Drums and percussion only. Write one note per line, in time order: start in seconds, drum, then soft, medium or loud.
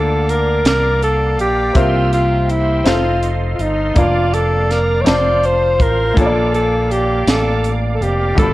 0.29 closed hi-hat soft
0.65 snare loud
0.65 closed hi-hat medium
1.02 closed hi-hat soft
1.39 closed hi-hat soft
1.75 kick medium
1.75 closed hi-hat medium
2.13 closed hi-hat soft
2.50 closed hi-hat soft
2.86 snare medium
2.86 closed hi-hat medium
3.23 closed hi-hat soft
3.59 closed hi-hat soft
3.96 kick medium
3.96 closed hi-hat medium
4.34 closed hi-hat soft
4.71 snare soft
4.71 closed hi-hat soft
5.06 snare loud
5.06 closed hi-hat medium
5.43 closed hi-hat soft
5.80 kick medium
5.80 closed hi-hat soft
6.17 kick medium
6.17 closed hi-hat medium
6.55 closed hi-hat soft
6.91 closed hi-hat medium
7.27 snare loud
7.27 closed hi-hat medium
7.64 closed hi-hat soft
8.02 closed hi-hat soft
8.38 kick medium
8.38 closed hi-hat medium